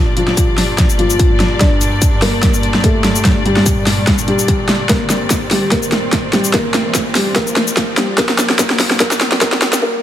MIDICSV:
0, 0, Header, 1, 5, 480
1, 0, Start_track
1, 0, Key_signature, -2, "minor"
1, 0, Tempo, 410959
1, 1876, Time_signature, 4, 2, 24, 8
1, 11708, End_track
2, 0, Start_track
2, 0, Title_t, "Felt piano"
2, 0, Program_c, 0, 0
2, 195, Note_on_c, 0, 53, 76
2, 195, Note_on_c, 0, 65, 90
2, 1067, Note_off_c, 0, 53, 0
2, 1067, Note_off_c, 0, 65, 0
2, 1154, Note_on_c, 0, 53, 73
2, 1154, Note_on_c, 0, 65, 94
2, 1786, Note_off_c, 0, 53, 0
2, 1786, Note_off_c, 0, 65, 0
2, 1873, Note_on_c, 0, 62, 78
2, 1874, Note_on_c, 0, 74, 94
2, 2506, Note_off_c, 0, 62, 0
2, 2506, Note_off_c, 0, 74, 0
2, 2594, Note_on_c, 0, 58, 75
2, 2594, Note_on_c, 0, 70, 98
2, 3226, Note_off_c, 0, 70, 0
2, 3227, Note_off_c, 0, 58, 0
2, 3315, Note_on_c, 0, 57, 73
2, 3315, Note_on_c, 0, 69, 91
2, 3947, Note_off_c, 0, 57, 0
2, 3947, Note_off_c, 0, 69, 0
2, 4036, Note_on_c, 0, 55, 74
2, 4036, Note_on_c, 0, 67, 94
2, 4907, Note_off_c, 0, 55, 0
2, 4907, Note_off_c, 0, 67, 0
2, 4996, Note_on_c, 0, 55, 74
2, 4996, Note_on_c, 0, 67, 94
2, 5627, Note_off_c, 0, 55, 0
2, 5627, Note_off_c, 0, 67, 0
2, 5717, Note_on_c, 0, 58, 66
2, 5717, Note_on_c, 0, 70, 89
2, 6348, Note_off_c, 0, 58, 0
2, 6348, Note_off_c, 0, 70, 0
2, 6435, Note_on_c, 0, 67, 85
2, 6436, Note_on_c, 0, 55, 68
2, 6658, Note_off_c, 0, 55, 0
2, 6658, Note_off_c, 0, 67, 0
2, 6675, Note_on_c, 0, 58, 71
2, 6675, Note_on_c, 0, 70, 92
2, 7307, Note_off_c, 0, 58, 0
2, 7307, Note_off_c, 0, 70, 0
2, 7395, Note_on_c, 0, 55, 76
2, 7395, Note_on_c, 0, 67, 95
2, 7618, Note_off_c, 0, 55, 0
2, 7618, Note_off_c, 0, 67, 0
2, 7635, Note_on_c, 0, 70, 94
2, 7636, Note_on_c, 0, 58, 72
2, 8267, Note_off_c, 0, 58, 0
2, 8267, Note_off_c, 0, 70, 0
2, 8354, Note_on_c, 0, 55, 74
2, 8354, Note_on_c, 0, 67, 90
2, 8577, Note_off_c, 0, 55, 0
2, 8577, Note_off_c, 0, 67, 0
2, 8594, Note_on_c, 0, 58, 75
2, 8594, Note_on_c, 0, 70, 96
2, 9226, Note_off_c, 0, 58, 0
2, 9226, Note_off_c, 0, 70, 0
2, 9315, Note_on_c, 0, 55, 78
2, 9315, Note_on_c, 0, 67, 91
2, 9537, Note_off_c, 0, 67, 0
2, 9538, Note_off_c, 0, 55, 0
2, 9554, Note_on_c, 0, 58, 72
2, 9554, Note_on_c, 0, 70, 93
2, 10016, Note_off_c, 0, 58, 0
2, 10017, Note_off_c, 0, 70, 0
2, 10034, Note_on_c, 0, 58, 77
2, 10034, Note_on_c, 0, 70, 97
2, 10497, Note_off_c, 0, 58, 0
2, 10497, Note_off_c, 0, 70, 0
2, 10514, Note_on_c, 0, 58, 76
2, 10514, Note_on_c, 0, 70, 100
2, 10977, Note_off_c, 0, 58, 0
2, 10977, Note_off_c, 0, 70, 0
2, 10994, Note_on_c, 0, 58, 77
2, 10994, Note_on_c, 0, 70, 102
2, 11457, Note_off_c, 0, 58, 0
2, 11457, Note_off_c, 0, 70, 0
2, 11474, Note_on_c, 0, 70, 102
2, 11475, Note_on_c, 0, 58, 82
2, 11697, Note_off_c, 0, 58, 0
2, 11697, Note_off_c, 0, 70, 0
2, 11708, End_track
3, 0, Start_track
3, 0, Title_t, "String section"
3, 0, Program_c, 1, 48
3, 0, Note_on_c, 1, 43, 82
3, 0, Note_on_c, 1, 46, 76
3, 0, Note_on_c, 1, 55, 75
3, 0, Note_on_c, 1, 62, 74
3, 0, Note_on_c, 1, 74, 89
3, 5669, Note_off_c, 1, 62, 0
3, 5717, Note_on_c, 1, 60, 79
3, 11429, Note_off_c, 1, 43, 0
3, 11429, Note_off_c, 1, 46, 0
3, 11429, Note_off_c, 1, 55, 0
3, 11429, Note_off_c, 1, 60, 0
3, 11429, Note_off_c, 1, 74, 0
3, 11708, End_track
4, 0, Start_track
4, 0, Title_t, "Riser"
4, 0, Program_c, 2, 103
4, 0, Note_on_c, 2, 60, 75
4, 11475, Note_off_c, 2, 60, 0
4, 11708, End_track
5, 0, Start_track
5, 0, Title_t, "Drums"
5, 195, Note_on_c, 9, 42, 54
5, 311, Note_off_c, 9, 42, 0
5, 324, Note_on_c, 9, 38, 47
5, 435, Note_on_c, 9, 36, 89
5, 435, Note_on_c, 9, 42, 81
5, 435, Note_on_c, 9, 82, 80
5, 441, Note_off_c, 9, 38, 0
5, 552, Note_off_c, 9, 36, 0
5, 552, Note_off_c, 9, 42, 0
5, 552, Note_off_c, 9, 82, 0
5, 675, Note_on_c, 9, 38, 52
5, 675, Note_on_c, 9, 46, 83
5, 792, Note_off_c, 9, 38, 0
5, 792, Note_off_c, 9, 46, 0
5, 915, Note_on_c, 9, 36, 96
5, 915, Note_on_c, 9, 38, 52
5, 915, Note_on_c, 9, 42, 76
5, 1032, Note_off_c, 9, 36, 0
5, 1032, Note_off_c, 9, 38, 0
5, 1032, Note_off_c, 9, 42, 0
5, 1045, Note_on_c, 9, 82, 49
5, 1155, Note_on_c, 9, 42, 50
5, 1162, Note_off_c, 9, 82, 0
5, 1272, Note_off_c, 9, 42, 0
5, 1285, Note_on_c, 9, 82, 73
5, 1395, Note_on_c, 9, 36, 94
5, 1395, Note_on_c, 9, 42, 73
5, 1402, Note_off_c, 9, 82, 0
5, 1512, Note_off_c, 9, 36, 0
5, 1512, Note_off_c, 9, 42, 0
5, 1635, Note_on_c, 9, 38, 55
5, 1635, Note_on_c, 9, 42, 51
5, 1752, Note_off_c, 9, 38, 0
5, 1752, Note_off_c, 9, 42, 0
5, 1875, Note_on_c, 9, 36, 104
5, 1876, Note_on_c, 9, 38, 59
5, 1876, Note_on_c, 9, 42, 75
5, 1992, Note_off_c, 9, 36, 0
5, 1992, Note_off_c, 9, 38, 0
5, 1992, Note_off_c, 9, 42, 0
5, 2115, Note_on_c, 9, 42, 51
5, 2115, Note_on_c, 9, 82, 61
5, 2232, Note_off_c, 9, 42, 0
5, 2232, Note_off_c, 9, 82, 0
5, 2355, Note_on_c, 9, 36, 96
5, 2356, Note_on_c, 9, 42, 80
5, 2356, Note_on_c, 9, 82, 76
5, 2472, Note_off_c, 9, 36, 0
5, 2472, Note_off_c, 9, 42, 0
5, 2472, Note_off_c, 9, 82, 0
5, 2595, Note_on_c, 9, 38, 58
5, 2595, Note_on_c, 9, 46, 83
5, 2712, Note_off_c, 9, 38, 0
5, 2712, Note_off_c, 9, 46, 0
5, 2835, Note_on_c, 9, 36, 97
5, 2835, Note_on_c, 9, 38, 59
5, 2835, Note_on_c, 9, 42, 74
5, 2952, Note_off_c, 9, 36, 0
5, 2952, Note_off_c, 9, 38, 0
5, 2952, Note_off_c, 9, 42, 0
5, 2965, Note_on_c, 9, 82, 50
5, 3075, Note_on_c, 9, 42, 49
5, 3081, Note_off_c, 9, 82, 0
5, 3192, Note_off_c, 9, 42, 0
5, 3205, Note_on_c, 9, 38, 55
5, 3315, Note_on_c, 9, 36, 95
5, 3315, Note_on_c, 9, 42, 77
5, 3322, Note_off_c, 9, 38, 0
5, 3432, Note_off_c, 9, 36, 0
5, 3432, Note_off_c, 9, 42, 0
5, 3555, Note_on_c, 9, 38, 66
5, 3555, Note_on_c, 9, 42, 51
5, 3672, Note_off_c, 9, 38, 0
5, 3672, Note_off_c, 9, 42, 0
5, 3685, Note_on_c, 9, 82, 73
5, 3795, Note_on_c, 9, 36, 96
5, 3795, Note_on_c, 9, 38, 65
5, 3795, Note_on_c, 9, 42, 71
5, 3802, Note_off_c, 9, 82, 0
5, 3912, Note_off_c, 9, 36, 0
5, 3912, Note_off_c, 9, 38, 0
5, 3912, Note_off_c, 9, 42, 0
5, 4036, Note_on_c, 9, 42, 49
5, 4153, Note_off_c, 9, 42, 0
5, 4165, Note_on_c, 9, 38, 59
5, 4275, Note_on_c, 9, 36, 91
5, 4276, Note_on_c, 9, 42, 77
5, 4276, Note_on_c, 9, 82, 81
5, 4282, Note_off_c, 9, 38, 0
5, 4392, Note_off_c, 9, 36, 0
5, 4393, Note_off_c, 9, 42, 0
5, 4393, Note_off_c, 9, 82, 0
5, 4516, Note_on_c, 9, 38, 64
5, 4516, Note_on_c, 9, 46, 87
5, 4633, Note_off_c, 9, 38, 0
5, 4633, Note_off_c, 9, 46, 0
5, 4755, Note_on_c, 9, 36, 96
5, 4757, Note_on_c, 9, 38, 70
5, 4757, Note_on_c, 9, 42, 71
5, 4872, Note_off_c, 9, 36, 0
5, 4873, Note_off_c, 9, 38, 0
5, 4873, Note_off_c, 9, 42, 0
5, 4886, Note_on_c, 9, 82, 53
5, 4997, Note_on_c, 9, 42, 48
5, 5003, Note_off_c, 9, 82, 0
5, 5114, Note_off_c, 9, 42, 0
5, 5126, Note_on_c, 9, 82, 80
5, 5235, Note_on_c, 9, 36, 96
5, 5236, Note_on_c, 9, 42, 77
5, 5242, Note_off_c, 9, 82, 0
5, 5352, Note_off_c, 9, 36, 0
5, 5353, Note_off_c, 9, 42, 0
5, 5476, Note_on_c, 9, 38, 72
5, 5476, Note_on_c, 9, 42, 49
5, 5593, Note_off_c, 9, 38, 0
5, 5593, Note_off_c, 9, 42, 0
5, 5716, Note_on_c, 9, 36, 102
5, 5716, Note_on_c, 9, 38, 72
5, 5716, Note_on_c, 9, 42, 76
5, 5833, Note_off_c, 9, 36, 0
5, 5833, Note_off_c, 9, 38, 0
5, 5833, Note_off_c, 9, 42, 0
5, 5956, Note_on_c, 9, 38, 73
5, 5956, Note_on_c, 9, 42, 50
5, 5956, Note_on_c, 9, 82, 68
5, 6073, Note_off_c, 9, 38, 0
5, 6073, Note_off_c, 9, 42, 0
5, 6073, Note_off_c, 9, 82, 0
5, 6196, Note_on_c, 9, 36, 93
5, 6196, Note_on_c, 9, 38, 78
5, 6196, Note_on_c, 9, 42, 76
5, 6196, Note_on_c, 9, 82, 89
5, 6313, Note_off_c, 9, 36, 0
5, 6313, Note_off_c, 9, 38, 0
5, 6313, Note_off_c, 9, 42, 0
5, 6313, Note_off_c, 9, 82, 0
5, 6436, Note_on_c, 9, 38, 71
5, 6436, Note_on_c, 9, 46, 89
5, 6553, Note_off_c, 9, 38, 0
5, 6553, Note_off_c, 9, 46, 0
5, 6676, Note_on_c, 9, 36, 93
5, 6676, Note_on_c, 9, 38, 77
5, 6676, Note_on_c, 9, 42, 73
5, 6792, Note_off_c, 9, 36, 0
5, 6793, Note_off_c, 9, 38, 0
5, 6793, Note_off_c, 9, 42, 0
5, 6805, Note_on_c, 9, 82, 53
5, 6916, Note_on_c, 9, 38, 76
5, 6916, Note_on_c, 9, 42, 49
5, 6922, Note_off_c, 9, 82, 0
5, 7033, Note_off_c, 9, 38, 0
5, 7033, Note_off_c, 9, 42, 0
5, 7155, Note_on_c, 9, 36, 103
5, 7156, Note_on_c, 9, 38, 77
5, 7156, Note_on_c, 9, 42, 76
5, 7272, Note_off_c, 9, 36, 0
5, 7272, Note_off_c, 9, 38, 0
5, 7272, Note_off_c, 9, 42, 0
5, 7396, Note_on_c, 9, 38, 82
5, 7396, Note_on_c, 9, 42, 50
5, 7513, Note_off_c, 9, 38, 0
5, 7513, Note_off_c, 9, 42, 0
5, 7524, Note_on_c, 9, 82, 79
5, 7635, Note_on_c, 9, 36, 104
5, 7635, Note_on_c, 9, 38, 86
5, 7635, Note_on_c, 9, 42, 79
5, 7641, Note_off_c, 9, 82, 0
5, 7751, Note_off_c, 9, 38, 0
5, 7751, Note_off_c, 9, 42, 0
5, 7752, Note_off_c, 9, 36, 0
5, 7875, Note_on_c, 9, 38, 88
5, 7875, Note_on_c, 9, 42, 54
5, 7992, Note_off_c, 9, 38, 0
5, 7992, Note_off_c, 9, 42, 0
5, 8114, Note_on_c, 9, 38, 88
5, 8114, Note_on_c, 9, 42, 81
5, 8114, Note_on_c, 9, 82, 84
5, 8115, Note_on_c, 9, 36, 96
5, 8231, Note_off_c, 9, 38, 0
5, 8231, Note_off_c, 9, 42, 0
5, 8231, Note_off_c, 9, 82, 0
5, 8232, Note_off_c, 9, 36, 0
5, 8354, Note_on_c, 9, 38, 80
5, 8354, Note_on_c, 9, 46, 90
5, 8471, Note_off_c, 9, 38, 0
5, 8471, Note_off_c, 9, 46, 0
5, 8595, Note_on_c, 9, 36, 97
5, 8595, Note_on_c, 9, 38, 84
5, 8595, Note_on_c, 9, 42, 78
5, 8711, Note_off_c, 9, 38, 0
5, 8711, Note_off_c, 9, 42, 0
5, 8712, Note_off_c, 9, 36, 0
5, 8724, Note_on_c, 9, 82, 52
5, 8835, Note_on_c, 9, 38, 88
5, 8835, Note_on_c, 9, 42, 50
5, 8841, Note_off_c, 9, 82, 0
5, 8952, Note_off_c, 9, 38, 0
5, 8952, Note_off_c, 9, 42, 0
5, 8964, Note_on_c, 9, 82, 82
5, 9075, Note_on_c, 9, 36, 96
5, 9075, Note_on_c, 9, 38, 87
5, 9075, Note_on_c, 9, 42, 77
5, 9081, Note_off_c, 9, 82, 0
5, 9192, Note_off_c, 9, 36, 0
5, 9192, Note_off_c, 9, 38, 0
5, 9192, Note_off_c, 9, 42, 0
5, 9315, Note_on_c, 9, 38, 89
5, 9315, Note_on_c, 9, 42, 52
5, 9432, Note_off_c, 9, 38, 0
5, 9432, Note_off_c, 9, 42, 0
5, 9555, Note_on_c, 9, 36, 101
5, 9555, Note_on_c, 9, 38, 93
5, 9555, Note_on_c, 9, 42, 80
5, 9671, Note_off_c, 9, 36, 0
5, 9671, Note_off_c, 9, 38, 0
5, 9671, Note_off_c, 9, 42, 0
5, 9684, Note_on_c, 9, 38, 84
5, 9795, Note_off_c, 9, 38, 0
5, 9795, Note_on_c, 9, 38, 97
5, 9795, Note_on_c, 9, 42, 55
5, 9795, Note_on_c, 9, 82, 63
5, 9912, Note_off_c, 9, 38, 0
5, 9912, Note_off_c, 9, 42, 0
5, 9912, Note_off_c, 9, 82, 0
5, 9925, Note_on_c, 9, 38, 84
5, 10035, Note_off_c, 9, 38, 0
5, 10035, Note_on_c, 9, 36, 96
5, 10035, Note_on_c, 9, 38, 98
5, 10035, Note_on_c, 9, 42, 87
5, 10035, Note_on_c, 9, 82, 84
5, 10152, Note_off_c, 9, 36, 0
5, 10152, Note_off_c, 9, 38, 0
5, 10152, Note_off_c, 9, 42, 0
5, 10152, Note_off_c, 9, 82, 0
5, 10164, Note_on_c, 9, 38, 84
5, 10274, Note_off_c, 9, 38, 0
5, 10274, Note_on_c, 9, 38, 92
5, 10274, Note_on_c, 9, 46, 96
5, 10391, Note_off_c, 9, 38, 0
5, 10391, Note_off_c, 9, 46, 0
5, 10404, Note_on_c, 9, 38, 81
5, 10515, Note_off_c, 9, 38, 0
5, 10515, Note_on_c, 9, 36, 97
5, 10515, Note_on_c, 9, 38, 95
5, 10515, Note_on_c, 9, 42, 76
5, 10631, Note_off_c, 9, 36, 0
5, 10632, Note_off_c, 9, 38, 0
5, 10632, Note_off_c, 9, 42, 0
5, 10645, Note_on_c, 9, 38, 85
5, 10645, Note_on_c, 9, 82, 52
5, 10755, Note_off_c, 9, 38, 0
5, 10755, Note_on_c, 9, 38, 96
5, 10755, Note_on_c, 9, 42, 56
5, 10762, Note_off_c, 9, 82, 0
5, 10872, Note_off_c, 9, 38, 0
5, 10872, Note_off_c, 9, 42, 0
5, 10885, Note_on_c, 9, 38, 86
5, 10995, Note_off_c, 9, 38, 0
5, 10995, Note_on_c, 9, 36, 105
5, 10995, Note_on_c, 9, 38, 94
5, 10995, Note_on_c, 9, 42, 81
5, 11112, Note_off_c, 9, 36, 0
5, 11112, Note_off_c, 9, 38, 0
5, 11112, Note_off_c, 9, 42, 0
5, 11125, Note_on_c, 9, 38, 89
5, 11235, Note_off_c, 9, 38, 0
5, 11235, Note_on_c, 9, 38, 105
5, 11235, Note_on_c, 9, 42, 54
5, 11352, Note_off_c, 9, 38, 0
5, 11352, Note_off_c, 9, 42, 0
5, 11364, Note_on_c, 9, 38, 88
5, 11364, Note_on_c, 9, 82, 84
5, 11481, Note_off_c, 9, 38, 0
5, 11481, Note_off_c, 9, 82, 0
5, 11708, End_track
0, 0, End_of_file